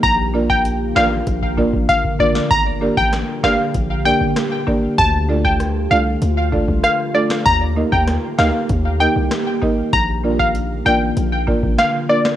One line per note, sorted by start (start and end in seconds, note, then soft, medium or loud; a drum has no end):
0.00 0.92 A#1 loud
0.00 7.42 D3 medium
0.00 4.94 A#3 medium
0.00 2.48 F4 medium
0.00 0.14 A#5 loud
0.00 kick loud
0.00 closed hi-hat medium
0.34 0.46 A#3 medium
0.34 0.47 D4 medium
0.34 0.47 F4 medium
0.34 0.47 A#4 medium
0.34 0.47 D5 medium
0.50 0.61 G5 medium
0.50 kick medium
0.65 closed hi-hat medium
0.96 1.21 A1 medium
0.96 1.08 A#3 medium
0.96 1.08 D4 medium
0.96 1.09 F4 medium
0.96 1.09 A#4 medium
0.96 1.09 D5 medium
0.96 1.07 F5 medium
0.96 cross-stick loud
0.96 snare loud
1.27 1.65 A#1 loud
1.27 kick medium
1.27 closed hi-hat medium
1.43 kick medium
1.57 1.70 A#3 medium
1.57 1.70 D4 medium
1.57 1.70 F4 medium
1.57 1.71 A#4 medium
1.57 1.71 D5 loud
1.57 kick medium
1.74 1.86 A1 medium
1.74 kick medium
1.89 2.00 F5 medium
1.89 kick loud
1.89 closed hi-hat medium
2.04 kick medium
2.19 2.32 A#3 medium
2.19 2.32 D4 medium
2.19 2.32 F4 medium
2.19 2.32 A#4 medium
2.19 2.31 D5 medium
2.19 2.32 D5 medium
2.19 kick loud
2.35 snare loud
2.51 2.89 G1 loud
2.51 4.96 G4 medium
2.51 2.61 A#5 loud
2.51 kick loud
2.51 closed hi-hat medium
2.81 2.94 A#3 medium
2.81 2.94 D4 medium
2.81 2.94 G4 medium
2.81 2.94 A#4 medium
2.81 2.94 D5 medium
2.97 3.22 A1 loud
2.97 3.08 G5 medium
2.97 kick medium
3.13 cross-stick medium
3.13 snare medium
3.13 closed hi-hat medium
3.43 3.56 G1 medium
3.43 3.56 A#3 medium
3.43 3.56 D4 medium
3.43 3.56 G4 medium
3.43 3.56 A#4 medium
3.43 3.56 D5 medium
3.43 3.54 F5 medium
3.43 cross-stick loud
3.43 snare loud
3.74 4.12 A#1 loud
3.74 kick medium
3.74 closed hi-hat medium
4.05 4.17 A#3 medium
4.05 4.18 D4 medium
4.05 4.18 G4 medium
4.05 4.18 A#4 medium
4.05 4.18 D5 medium
4.05 4.16 G5 medium
4.21 4.33 G1 medium
4.36 cross-stick medium
4.36 snare loud
4.36 closed hi-hat medium
4.67 4.79 A#3 loud
4.67 4.79 D4 medium
4.67 4.80 G4 medium
4.67 4.80 A#4 medium
4.67 4.80 D5 loud
4.67 kick loud
4.98 5.87 D2 loud
4.98 7.43 A3 medium
4.98 7.43 F4 medium
4.98 5.09 A5 loud
4.98 kick loud
4.98 closed hi-hat medium
5.29 5.41 A3 medium
5.29 5.41 D4 medium
5.29 5.41 F4 medium
5.29 5.42 A4 medium
5.29 5.42 D5 medium
5.45 5.55 G5 medium
5.45 kick loud
5.60 cross-stick medium
5.60 closed hi-hat medium
5.91 6.16 C2 medium
5.91 6.03 A3 medium
5.91 6.03 D4 medium
5.91 6.03 F4 medium
5.91 6.04 A4 medium
5.91 6.04 D5 medium
5.91 6.02 F5 medium
6.22 6.60 D2 loud
6.22 closed hi-hat medium
6.52 6.65 A3 medium
6.52 6.65 D4 medium
6.52 6.65 F4 medium
6.52 6.65 A4 medium
6.52 6.66 D5 loud
6.52 kick loud
6.68 6.81 C2 medium
6.68 kick medium
6.84 6.95 F5 medium
6.84 cross-stick medium
6.84 closed hi-hat medium
7.14 7.27 A3 medium
7.14 7.27 D4 medium
7.14 7.27 F4 medium
7.14 7.27 A4 medium
7.14 7.25 D5 medium
7.14 7.27 D5 medium
7.30 cross-stick loud
7.30 snare loud
7.46 7.83 D#2 loud
7.46 9.91 D#3 medium
7.46 12.36 A#3 medium
7.46 9.91 G4 medium
7.46 7.56 A#5 loud
7.46 kick loud
7.46 closed hi-hat medium
7.76 7.89 A#3 medium
7.76 7.89 D#4 medium
7.76 7.89 G4 medium
7.76 7.89 A#4 medium
7.76 7.89 D#5 medium
7.92 8.17 D#2 loud
7.92 8.03 G5 medium
7.92 kick medium
8.07 cross-stick medium
8.07 snare medium
8.07 closed hi-hat medium
8.38 8.51 D2 loud
8.38 8.51 A#3 medium
8.38 8.51 D#4 medium
8.38 8.51 G4 medium
8.38 8.51 A#4 medium
8.38 8.51 D#5 medium
8.38 8.49 F5 medium
8.38 cross-stick medium
8.38 snare loud
8.69 9.07 D#2 loud
8.69 kick medium
8.69 closed hi-hat medium
9.00 9.12 A#3 medium
9.00 9.13 D#4 medium
9.00 9.13 G4 medium
9.00 9.13 A#4 medium
9.00 9.13 D#5 medium
9.00 9.11 G5 medium
9.16 9.28 C2 medium
9.31 cross-stick medium
9.31 snare loud
9.31 closed hi-hat medium
9.62 9.74 A#3 medium
9.62 9.74 D#4 medium
9.62 9.75 G4 medium
9.62 9.75 A#4 medium
9.62 9.75 D#5 loud
9.62 kick loud
9.93 10.82 A#1 loud
9.93 12.36 D3 medium
9.93 12.36 F4 medium
9.93 10.04 A#5 loud
9.93 kick loud
9.93 closed hi-hat medium
10.23 10.36 A#3 medium
10.23 10.36 D4 medium
10.23 10.36 F4 medium
10.23 10.37 A#4 medium
10.23 10.37 D5 medium
10.39 10.50 F5 medium
10.39 kick medium
10.55 closed hi-hat medium
10.85 11.11 A1 medium
10.85 10.98 A#3 medium
10.85 10.98 D4 medium
10.85 10.98 F4 medium
10.85 10.98 A#4 medium
10.85 10.98 D5 medium
10.85 10.97 G5 medium
11.17 11.55 A#1 loud
11.17 closed hi-hat medium
11.47 11.60 A#3 medium
11.47 11.60 D4 medium
11.47 11.60 F4 medium
11.47 11.60 A#4 medium
11.47 11.60 D5 medium
11.47 kick loud
11.63 11.76 A1 medium
11.63 kick medium
11.78 11.89 F5 medium
11.78 cross-stick medium
11.78 snare medium
11.78 closed hi-hat medium
12.09 12.22 A#3 medium
12.09 12.22 D4 medium
12.09 12.22 F4 medium
12.09 12.22 A#4 medium
12.09 12.20 D5 medium
12.09 12.22 D5 medium
12.25 cross-stick loud
12.25 snare loud